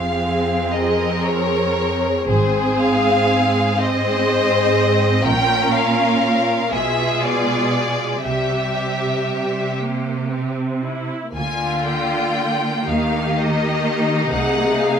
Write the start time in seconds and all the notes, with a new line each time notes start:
Already playing: F1 F2 C4 G#4 F5
0.71 A#4 D#5
1.24 C#5
2.27 G#1 G#2 C4 G#4 C5
2.81 F5
3.78 C4 G#4 C5 D#5
5.24 A#1 A#2 C#4 F4 A#4 G5
5.74 F5
6.72 B1 B2 G#3 F4 G#4 E5
7.22 D5
8.24 C2 C3 G3 G4 E5
9.79 A#3
10.31 C4
10.83 E4
11.36 D2 D3 A#3 F4 G#5
11.88 G5
12.88 D#2 D#3 D#4 G4 F5
13.37 D#5
14.32 C2 C3 G#4 F#5
14.81 F5